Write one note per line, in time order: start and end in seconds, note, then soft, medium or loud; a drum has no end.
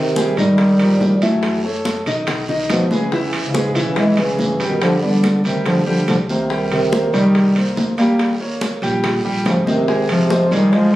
0.00 0.34 C3 medium
0.00 0.35 D#3 medium
0.16 0.34 G3 medium
0.16 0.34 G4 medium
0.16 0.34 G#4 medium
0.16 high bongo medium
0.16 high conga medium
0.16 short guiro medium
0.37 0.96 G#2 medium
0.37 1.24 D#3 medium
0.37 0.72 D#3 medium
0.37 1.24 G3 loud
0.37 0.72 D#4 medium
0.37 0.72 D#5 medium
0.37 high bongo soft
0.37 high timbale medium
0.37 short guiro medium
0.58 high bongo medium
0.58 high conga soft
0.58 high timbale medium
0.58 long guiro medium
0.79 1.14 F3 medium
0.79 1.14 G4 medium
0.79 1.14 A#4 medium
0.79 high bongo soft
0.79 high conga soft
0.79 high timbale medium
1.00 2.00 F#2 medium
1.00 high bongo soft
1.00 low bongo medium
1.00 high conga medium
1.00 low timbale medium
1.00 short guiro medium
1.22 1.57 E3 medium
1.22 1.65 F#3 medium
1.22 1.64 A3 medium
1.22 1.57 E4 medium
1.22 1.57 E5 medium
1.22 high conga medium
1.22 high timbale medium
1.22 short guiro medium
1.43 high bongo medium
1.43 high conga soft
1.43 high timbale medium
1.43 long guiro medium
1.64 1.99 A3 medium
1.64 1.99 A4 medium
1.64 1.99 C#5 medium
1.64 high bongo soft
1.64 high conga soft
1.85 high bongo medium
1.85 high conga medium
1.85 high timbale medium
1.85 short guiro medium
2.06 2.66 B1 medium
2.06 2.41 D#3 medium
2.06 2.42 D#4 medium
2.06 2.42 D#5 medium
2.06 high bongo soft
2.06 high conga soft
2.06 high timbale medium
2.06 short guiro medium
2.27 high bongo medium
2.27 high conga soft
2.27 low conga medium
2.27 high timbale medium
2.27 long guiro medium
2.49 2.83 D#3 medium
2.49 2.84 D#4 medium
2.49 2.84 D#5 medium
2.49 high bongo soft
2.49 high conga soft
2.49 low conga medium
2.69 3.69 E2 medium
2.69 2.93 B2 medium
2.69 2.94 F3 medium
2.69 high bongo soft
2.69 low bongo medium
2.69 high conga medium
2.69 high timbale medium
2.69 short guiro medium
2.91 3.33 C#3 medium
2.91 3.34 E3 medium
2.91 3.09 G#3 medium
2.91 3.09 G#4 medium
2.91 3.09 B4 medium
2.91 high conga medium
2.91 short guiro medium
3.12 3.47 E3 medium
3.12 3.47 E4 medium
3.12 3.47 E5 medium
3.12 high bongo medium
3.12 high conga soft
3.12 long guiro medium
3.33 high bongo soft
3.33 high conga soft
3.33 high timbale medium
3.42 3.86 G#2 medium
3.42 3.85 C#3 medium
3.54 3.72 G#3 medium
3.54 3.72 G#4 medium
3.54 3.72 B4 medium
3.54 high bongo medium
3.54 high conga medium
3.54 short guiro medium
3.74 4.34 B1 medium
3.74 4.10 E3 medium
3.74 4.10 E4 loud
3.74 4.10 E5 medium
3.74 high bongo soft
3.74 high timbale medium
3.74 short guiro medium
3.84 3.99 C#3 medium
3.84 4.00 E3 medium
3.96 4.20 E3 medium
3.96 4.21 G#3 loud
3.96 high bongo medium
3.96 high conga soft
3.96 high timbale medium
3.96 long guiro medium
4.17 4.68 C#3 medium
4.17 4.67 E3 medium
4.17 4.52 G#3 medium
4.17 4.52 G#4 medium
4.17 4.53 B4 medium
4.17 high bongo soft
4.17 high conga soft
4.17 high timbale medium
4.38 5.38 G1 medium
4.38 high bongo soft
4.38 low bongo medium
4.38 high conga medium
4.38 short guiro medium
4.60 4.95 G3 medium
4.60 4.95 G4 medium
4.60 4.95 G5 medium
4.60 high timbale medium
4.60 short guiro medium
4.68 4.81 B2 medium
4.68 4.81 D#3 medium
4.81 5.03 D3 medium
4.81 5.05 F3 medium
4.81 high bongo medium
4.81 high conga soft
4.81 high timbale medium
4.81 long guiro medium
5.02 5.45 D3 medium
5.02 5.45 G3 medium
5.02 5.37 B3 medium
5.02 5.37 B4 medium
5.02 5.37 D5 medium
5.02 high bongo soft
5.02 high conga soft
5.24 high bongo medium
5.24 high conga medium
5.24 high timbale medium
5.24 short guiro medium
5.44 6.04 D2 medium
5.44 5.65 C3 medium
5.44 5.65 D#3 medium
5.44 5.79 G3 medium
5.44 5.79 G4 medium
5.44 5.79 G5 medium
5.44 high bongo soft
5.44 high conga soft
5.44 high timbale medium
5.44 short guiro medium
5.66 5.85 D3 medium
5.66 5.86 F3 loud
5.66 high bongo medium
5.66 high conga soft
5.66 low conga medium
5.66 high timbale medium
5.66 long guiro medium
5.86 6.06 D3 medium
5.86 6.07 F3 medium
5.86 6.21 G3 medium
5.86 6.21 G4 medium
5.86 6.22 G5 medium
5.86 high bongo soft
5.86 high conga soft
5.86 low conga medium
6.08 7.07 C2 medium
6.08 6.18 D3 medium
6.08 6.18 F3 medium
6.08 high bongo soft
6.08 low bongo medium
6.08 high conga medium
6.08 high timbale medium
6.08 short guiro medium
6.29 6.68 C3 medium
6.29 6.69 D#3 medium
6.29 6.47 A#3 medium
6.29 6.47 A#4 medium
6.29 6.47 C5 medium
6.29 high conga medium
6.29 short guiro medium
6.50 6.85 G3 medium
6.50 6.85 G4 medium
6.50 6.85 G5 medium
6.50 high bongo medium
6.50 high conga soft
6.50 long guiro medium
6.71 7.11 C3 medium
6.71 7.11 D#3 medium
6.71 high bongo soft
6.71 high conga soft
6.71 high timbale medium
6.92 7.10 A#3 medium
6.92 7.10 A#4 medium
6.92 7.10 C5 medium
6.92 high bongo soft
6.92 high conga medium
6.92 short guiro medium
7.13 7.73 C2 medium
7.13 7.67 D#3 medium
7.13 7.48 G3 medium
7.13 7.67 G3 medium
7.13 7.49 G4 medium
7.13 7.49 G5 medium
7.13 high bongo soft
7.13 high timbale medium
7.13 short guiro medium
7.35 high bongo medium
7.35 high conga soft
7.35 high timbale medium
7.35 long guiro medium
7.56 7.90 A#3 medium
7.56 7.91 A#4 medium
7.56 7.91 C5 medium
7.56 high bongo soft
7.56 high conga soft
7.56 high timbale medium
7.76 8.76 D#2 medium
7.76 high bongo soft
7.76 low bongo medium
7.76 high conga medium
7.76 low timbale medium
7.76 short guiro medium
7.98 8.33 G3 medium
7.98 8.38 G3 medium
7.98 8.38 A#3 medium
7.98 8.33 G4 medium
7.98 8.33 G5 medium
7.98 high conga medium
7.98 high timbale medium
7.98 short guiro medium
8.19 high bongo medium
8.19 high conga soft
8.19 high timbale medium
8.19 long guiro medium
8.40 8.75 A#3 medium
8.40 8.75 A#4 medium
8.40 8.75 C#5 medium
8.40 high bongo soft
8.40 high conga soft
8.61 high bongo soft
8.61 high conga medium
8.61 high timbale medium
8.61 short guiro medium
8.82 9.21 A#1 loud
8.82 9.17 G3 medium
8.82 9.17 G4 medium
8.82 9.18 G5 loud
8.82 high bongo soft
8.82 high conga soft
8.82 high timbale medium
8.82 short guiro medium
9.04 high bongo medium
9.04 high conga soft
9.04 low conga medium
9.04 high timbale medium
9.04 long guiro medium
9.24 9.44 A#1 medium
9.24 9.59 G3 medium
9.24 9.60 G4 medium
9.24 9.60 G5 medium
9.24 high bongo soft
9.24 high conga soft
9.46 10.45 G#1 medium
9.46 9.66 C#3 medium
9.46 9.67 F3 medium
9.46 high bongo soft
9.46 low bongo medium
9.46 high conga medium
9.46 high timbale medium
9.46 low timbale medium
9.46 short guiro medium
9.66 10.07 C3 medium
9.66 10.07 D#3 medium
9.66 9.84 C4 medium
9.66 9.84 C5 medium
9.66 9.84 D#5 medium
9.66 high conga medium
9.66 short guiro medium
9.88 10.23 G#3 medium
9.88 10.23 G#4 medium
9.88 10.23 G#5 medium
9.88 high bongo medium
9.88 high conga soft
9.88 long guiro medium
10.09 10.54 C3 medium
10.09 10.54 F3 loud
10.09 high bongo soft
10.09 high conga soft
10.09 high timbale medium
10.30 10.47 C4 medium
10.30 10.48 C5 medium
10.30 10.48 D#5 medium
10.30 high bongo medium
10.30 high conga loud
10.30 short guiro medium
10.51 10.96 F1 loud
10.51 10.74 D#3 loud
10.51 10.74 G3 medium
10.51 10.86 G#3 medium
10.51 10.86 G#4 medium
10.51 10.86 G#5 medium
10.51 high bongo soft
10.51 high timbale medium
10.51 short guiro medium
10.72 10.95 F3 loud
10.72 10.96 G#3 loud
10.72 high bongo medium
10.72 high conga soft
10.72 high timbale medium
10.72 long guiro medium